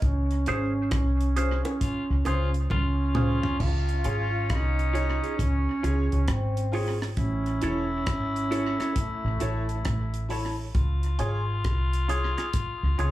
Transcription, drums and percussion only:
0.02 kick, closed hi-hat
0.31 closed hi-hat
0.46 closed hi-hat, high bongo
0.91 kick, cross-stick, closed hi-hat, high bongo
1.21 closed hi-hat
1.37 closed hi-hat
1.65 closed hi-hat, high bongo
1.81 kick, closed hi-hat
2.25 closed hi-hat, high bongo
2.54 closed hi-hat
2.70 kick, high tom, high bongo
3.15 mid tom, low bongo
3.43 floor tom
3.60 kick, crash
3.89 closed hi-hat
4.04 closed hi-hat
4.50 kick, cross-stick, closed hi-hat
4.79 closed hi-hat
4.95 closed hi-hat
5.24 closed hi-hat
5.39 kick, closed hi-hat
5.84 closed hi-hat
6.12 closed hi-hat
6.28 kick, cross-stick, closed hi-hat
6.57 closed hi-hat
6.73 open hi-hat
7.02 cross-stick
7.17 kick, closed hi-hat
7.46 closed hi-hat
7.62 closed hi-hat
8.07 kick, cross-stick, closed hi-hat
8.36 closed hi-hat
8.52 closed hi-hat
8.80 cross-stick, closed hi-hat
8.96 kick, closed hi-hat
9.40 closed hi-hat
9.69 closed hi-hat
9.85 kick, cross-stick, closed hi-hat
10.14 closed hi-hat
10.30 open hi-hat
10.75 kick, closed hi-hat
11.03 closed hi-hat
11.19 closed hi-hat
11.64 kick, cross-stick, closed hi-hat
11.93 closed hi-hat
12.09 closed hi-hat
12.38 cross-stick, closed hi-hat
12.53 kick, closed hi-hat
12.99 closed hi-hat

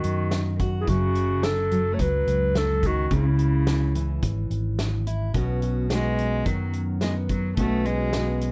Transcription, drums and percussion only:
0.04 closed hi-hat
0.31 snare, closed hi-hat
0.60 kick, closed hi-hat
0.87 kick, closed hi-hat
1.15 closed hi-hat
1.43 snare, closed hi-hat
1.71 closed hi-hat
1.99 kick, closed hi-hat
2.28 closed hi-hat
2.55 snare, closed hi-hat
2.83 kick, closed hi-hat
3.11 kick, closed hi-hat
3.39 closed hi-hat
3.67 snare, closed hi-hat
3.95 closed hi-hat
4.23 kick, closed hi-hat
4.51 closed hi-hat
4.79 snare, closed hi-hat
5.07 closed hi-hat
5.34 kick, closed hi-hat
5.62 closed hi-hat
5.90 snare, closed hi-hat
6.18 closed hi-hat
6.46 kick, closed hi-hat
6.73 closed hi-hat
7.01 snare, closed hi-hat
7.29 kick, closed hi-hat
7.57 kick, closed hi-hat
7.85 closed hi-hat
8.13 snare, closed hi-hat
8.41 closed hi-hat

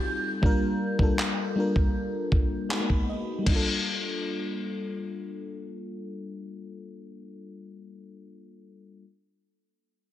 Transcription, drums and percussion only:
0.43 kick
0.99 kick
1.19 clap
1.76 kick
2.32 kick
2.71 clap
2.90 kick
3.46 kick, crash

